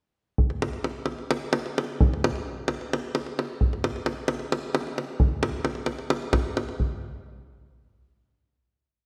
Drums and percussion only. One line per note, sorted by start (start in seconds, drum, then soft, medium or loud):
0.38 davul low medium
0.50 davul high soft
0.62 davul high medium
0.73 davul high soft
0.84 davul high medium
1.06 davul high medium
1.19 davul high soft
1.31 davul high medium
1.53 davul high medium
1.66 davul high soft
1.78 davul high medium
2.01 davul low medium
2.14 davul high soft
2.24 davul high medium
2.36 davul high soft
2.68 davul high medium
2.81 davul high soft
2.93 davul high medium
3.15 davul high medium
3.26 davul high soft
3.39 davul high medium
3.61 davul low medium
3.73 davul high soft
3.84 davul high medium
3.96 davul high soft
4.06 davul high medium
4.28 davul high medium
4.39 davul high soft
4.52 davul high medium
4.75 davul high medium
4.87 davul high soft
4.98 davul high medium
5.20 davul low medium
5.43 davul high medium
5.65 davul high medium
5.75 davul high soft
5.86 davul high medium
5.99 davul high soft
6.10 davul high medium
6.22 davul high soft
6.33 davul high medium
6.33 davul low medium
6.57 davul high medium
6.69 davul high soft
6.80 davul low medium